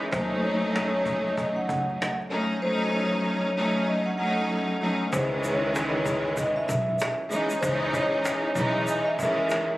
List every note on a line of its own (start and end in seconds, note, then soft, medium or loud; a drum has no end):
0.00 0.11 E3 medium
0.00 0.11 G#3 medium
0.00 0.10 C#4 medium
0.00 0.11 D#4 medium
0.00 cajon slap soft
0.11 1.33 D#2 loud
0.11 2.16 F#3 loud
0.11 2.16 A3 loud
0.11 2.16 C#4 loud
0.11 2.16 D#4 loud
0.11 0.40 C5 loud
0.11 cajon bass loud
0.43 1.33 C#5 medium
0.43 cajon slap soft
0.64 cajon slap soft
0.76 cajon slap loud
1.05 cajon bass loud
1.27 cajon slap soft
1.37 1.55 D#5 medium
1.37 cajon bass medium
1.56 1.66 F#5 medium
1.56 cajon slap soft
1.68 1.93 C#2 medium
1.68 2.15 F#5 medium
1.68 cajon bass loud
1.88 cajon slap soft
2.02 cajon slap loud
2.20 cajon slap soft
2.29 2.59 F#3 medium
2.29 2.60 A3 medium
2.29 2.60 C#4 medium
2.29 2.60 D#4 medium
2.29 cajon slap soft
2.51 cajon slap soft
2.62 3.50 F#3 loud
2.62 3.50 A3 medium
2.62 3.50 C#4 medium
2.62 3.51 D#4 loud
2.62 2.90 C5 loud
2.96 3.84 C#5 medium
3.56 4.15 F#3 medium
3.56 4.15 A3 loud
3.56 4.15 C#4 medium
3.56 4.15 D#4 loud
3.87 4.04 D#5 medium
4.06 4.17 F#5 medium
4.17 4.76 F#3 loud
4.17 4.76 A3 medium
4.17 4.77 C#4 medium
4.17 4.77 D#4 loud
4.17 4.65 F#5 medium
4.81 5.10 F#3 medium
4.81 5.10 A3 medium
4.81 5.10 C#4 medium
4.81 5.11 D#4 medium
5.10 6.34 C#2 loud
5.10 7.16 D#3 loud
5.10 7.15 E3 loud
5.10 7.16 G#3 loud
5.10 7.16 C#4 loud
5.10 5.40 C5 loud
5.10 cajon bass loud
5.10 shaker medium
5.44 6.33 C#5 medium
5.44 cajon slap soft
5.44 shaker soft
5.64 cajon slap soft
5.75 cajon slap loud
5.75 shaker medium
6.06 cajon bass loud
6.06 shaker medium
6.26 cajon slap soft
6.37 6.55 D#5 medium
6.37 cajon bass medium
6.37 shaker medium
6.56 6.67 E5 medium
6.56 cajon slap soft
6.68 6.93 B1 medium
6.68 7.15 E5 medium
6.68 cajon bass loud
6.68 shaker medium
6.88 cajon slap soft
6.99 cajon slap loud
6.99 shaker medium
7.20 cajon slap soft
7.29 7.60 E3 medium
7.29 7.60 G#3 medium
7.29 7.60 C#4 medium
7.29 7.60 D#4 medium
7.29 cajon slap soft
7.29 shaker medium
7.50 cajon slap soft
7.50 shaker medium
7.61 7.87 C#2 loud
7.61 8.50 E3 loud
7.61 8.50 G#3 medium
7.61 8.51 C#4 medium
7.61 8.51 D#4 loud
7.61 7.90 C5 loud
7.61 cajon bass loud
7.61 shaker medium
7.93 8.83 C#5 medium
7.93 cajon bass loud
7.93 shaker soft
8.14 cajon slap soft
8.25 cajon slap loud
8.25 shaker medium
8.46 cajon slap soft
8.55 8.80 B1 medium
8.55 9.14 E3 loud
8.55 9.14 G#3 loud
8.55 9.14 C#4 medium
8.55 9.15 D#4 loud
8.55 cajon bass loud
8.55 shaker medium
8.76 cajon slap soft
8.87 9.05 D#5 medium
8.87 cajon slap soft
8.87 shaker medium
9.05 9.17 E5 medium
9.05 cajon slap soft
9.19 9.78 D#3 loud
9.19 9.78 E3 loud
9.19 9.78 G#3 medium
9.19 9.78 C#4 medium
9.19 9.66 E5 medium
9.19 cajon bass loud
9.19 shaker medium
9.38 cajon slap soft
9.49 cajon slap loud
9.49 shaker medium
9.70 cajon slap soft